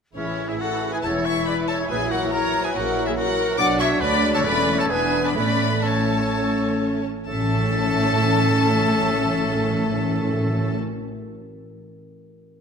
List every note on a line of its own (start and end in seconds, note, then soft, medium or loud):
0.15 0.52 A1 soft
0.15 0.53 A2 soft
0.15 0.78 A2 medium
0.15 0.26 C#3 soft
0.15 1.91 E3 soft
0.15 0.99 E3 soft
0.15 0.51 C#4 soft
0.15 3.55 E4 soft
0.15 0.99 E4 soft
0.15 0.47 E4 soft
0.15 0.47 C#5 medium
0.26 0.38 E3 soft
0.38 0.49 C#3 soft
0.49 0.60 E3 soft
0.49 0.62 E4 soft
0.49 0.60 G#4 soft
0.49 0.55 G#4 soft
0.49 0.61 E5 soft
0.59 0.71 C#3 soft
0.59 0.93 F#4 soft
0.59 0.92 A4 medium
0.59 0.95 A4 medium
0.59 0.91 F#5 medium
0.72 0.82 E3 soft
0.82 0.93 C#3 soft
0.92 1.04 E3 soft
0.92 0.98 G#4 medium
0.92 1.03 B4 soft
0.92 1.06 B4 soft
0.92 0.97 G#5 medium
1.02 1.39 E1 medium
1.02 1.39 E2 soft
1.02 1.14 C#3 soft
1.02 1.88 E3 soft
1.02 1.88 E4 soft
1.02 1.27 A4 medium
1.02 1.24 C#5 medium
1.02 1.25 C#5 medium
1.02 1.11 A5 medium
1.15 1.25 E3 soft
1.24 1.36 C#3 soft
1.24 1.48 C#5 medium
1.24 1.47 E5 medium
1.24 1.46 E5 medium
1.24 1.46 C#6 medium
1.36 1.46 E3 soft
1.46 1.58 C#3 soft
1.46 1.68 B4 medium
1.46 1.68 D5 medium
1.46 1.53 D5 medium
1.46 1.54 B5 medium
1.59 1.69 E3 soft
1.68 1.79 C#3 soft
1.68 1.78 A4 medium
1.68 1.89 C#5 medium
1.68 1.76 A5 medium
1.80 1.90 E3 soft
1.89 2.25 A#1 medium
1.89 2.25 A#2 medium
1.89 2.01 C#3 soft
1.89 2.30 F#3 soft
1.89 3.59 F#3 medium
1.89 2.30 E4 soft
1.89 2.13 G#4 medium
1.89 2.11 B4 medium
1.89 1.96 B4 medium
1.89 2.11 G#5 medium
2.01 2.11 E3 soft
2.11 2.22 F#3 soft
2.11 2.33 F#4 medium
2.11 2.32 A#4 medium
2.11 2.32 F#5 medium
2.22 2.33 E3 soft
2.31 2.43 C#3 soft
2.31 2.73 F#3 medium
2.31 2.73 E4 medium
2.31 2.64 A#4 medium
2.31 2.63 C#5 medium
2.31 2.67 C#5 medium
2.31 2.64 A#5 medium
2.43 2.54 E3 soft
2.53 2.64 F#3 soft
2.64 2.75 E3 soft
2.64 2.69 G#4 medium
2.64 2.74 B4 medium
2.64 2.75 B4 medium
2.64 2.75 G#5 medium
2.74 3.10 A#1 medium
2.74 3.10 A#2 medium
2.74 2.85 C#3 medium
2.74 3.15 F#3 medium
2.74 3.15 E4 medium
2.74 3.08 F#4 medium
2.74 3.06 A#4 medium
2.74 3.07 A#4 medium
2.74 3.06 F#5 medium
2.85 2.96 E3 soft
2.96 3.07 F#3 soft
3.06 3.17 E3 soft
3.06 3.17 E4 medium
3.06 3.10 G#4 medium
3.06 3.12 G#4 medium
3.06 3.10 E5 medium
3.16 3.27 C#3 medium
3.16 3.57 F#3 medium
3.16 3.58 E4 medium
3.16 3.58 F#4 medium
3.16 3.58 A#4 medium
3.16 3.61 A#4 medium
3.16 3.58 F#5 medium
3.28 3.38 E3 medium
3.38 3.49 F#3 medium
3.49 3.59 E3 medium
3.58 3.98 B1 medium
3.58 3.98 B2 medium
3.58 4.00 F#3 medium
3.58 3.98 F#3 medium
3.58 3.99 F#3 medium
3.58 4.00 D4 medium
3.58 3.98 D4 medium
3.58 3.99 D4 medium
3.58 3.80 D5 medium
3.58 3.80 F#5 medium
3.58 3.82 F#5 medium
3.58 3.66 D6 loud
3.79 4.03 C#5 medium
3.79 4.01 E5 medium
3.79 3.87 C#6 medium
4.00 4.44 D2 medium
4.00 4.45 D2 medium
4.00 4.46 F#3 medium
4.00 4.09 F#3 medium
4.00 4.44 F#3 medium
4.00 4.47 D4 medium
4.00 4.44 D4 medium
4.00 4.33 B4 medium
4.00 4.33 D5 medium
4.00 4.34 D5 medium
4.00 4.32 B5 medium
4.22 4.44 G#3 medium
4.33 4.46 A4 medium
4.33 4.45 C#5 medium
4.33 4.47 C#5 medium
4.33 4.38 A5 medium
4.43 4.88 E1 medium
4.43 4.86 E2 medium
4.43 4.88 E2 medium
4.43 4.89 A3 medium
4.43 4.91 A3 medium
4.43 4.90 A3 medium
4.43 4.88 C#4 medium
4.43 4.89 C#4 medium
4.43 4.90 C#4 medium
4.43 4.80 B4 medium
4.43 4.79 D5 medium
4.43 4.80 D5 medium
4.43 4.77 B5 medium
4.78 4.91 A4 medium
4.78 4.89 C#5 medium
4.78 4.92 C#5 medium
4.78 4.84 A5 medium
4.89 5.35 E1 medium
4.89 5.35 E2 medium
4.89 5.36 B3 medium
4.89 5.35 B3 medium
4.89 5.36 D4 medium
4.89 5.38 D4 medium
4.89 5.35 D4 medium
4.89 5.23 G#4 medium
4.89 5.23 B4 medium
4.89 5.26 B4 medium
4.89 5.24 G#5 medium
5.24 5.29 B4 medium
5.24 5.36 D5 medium
5.24 5.35 D5 medium
5.24 5.34 B5 medium
5.35 7.05 A1 medium
5.35 7.05 A2 medium
5.35 5.82 A3 medium
5.35 5.82 A3 soft
5.35 5.82 C#4 medium
5.35 5.82 C#4 soft
5.35 5.83 C#4 soft
5.35 5.84 B4 medium
5.35 5.83 D5 medium
5.35 5.86 D5 medium
5.35 5.82 B5 medium
5.83 7.00 A3 medium
5.83 7.03 A3 soft
5.83 7.01 A3 medium
5.83 7.01 C#4 medium
5.83 7.03 C#4 soft
5.83 7.01 C#4 medium
5.83 7.03 A4 medium
5.83 7.01 C#5 medium
5.83 7.04 C#5 medium
5.83 7.04 A5 medium
7.27 10.76 A1 medium
7.27 10.76 A2 medium
7.27 7.34 A2 medium
7.27 10.76 A3 medium
7.27 10.77 A3 medium
7.27 10.76 C#4 medium
7.27 10.77 C#4 medium
7.27 10.77 A4 medium
7.27 10.77 E5 medium
7.27 10.77 A5 medium
7.34 7.42 A2 medium
7.42 7.49 A2 medium
7.49 7.56 A2 medium
7.57 7.64 A2 medium
7.64 7.70 A2 medium
7.70 7.78 A2 medium
7.78 7.85 A2 medium
7.85 7.92 A2 medium
7.92 7.99 A2 medium
7.99 8.06 A2 medium
8.06 8.13 A2 medium
8.13 8.20 A2 medium
8.20 8.28 A2 medium
8.28 8.35 A2 medium
8.36 8.43 A2 medium
8.43 8.50 A2 medium
8.51 8.58 A2 medium
8.58 8.65 A2 medium
8.65 8.72 A2 medium
8.72 8.80 A2 medium
8.80 8.86 A2 medium
8.86 8.94 A2 medium
8.94 9.02 A2 medium
9.02 9.08 A2 medium
9.08 9.16 A2 medium
9.16 9.23 A2 medium
9.24 9.30 A2 medium
9.30 9.38 A2 medium
9.38 9.45 A2 medium
9.45 9.52 A2 medium
9.53 9.60 A2 medium
9.61 9.68 A2 medium
9.68 9.76 A2 medium
9.76 9.83 A2 medium
9.83 9.90 A2 medium
9.90 9.97 A2 medium
9.97 10.04 A2 medium
10.05 10.12 A2 medium
10.12 10.18 A2 medium
10.18 10.25 A2 medium
10.25 10.32 A2 medium
10.32 10.40 A2 medium
10.40 10.47 A2 medium
10.47 10.54 A2 medium
10.55 10.62 A2 medium
10.62 10.69 A2 medium
10.69 10.76 A2 medium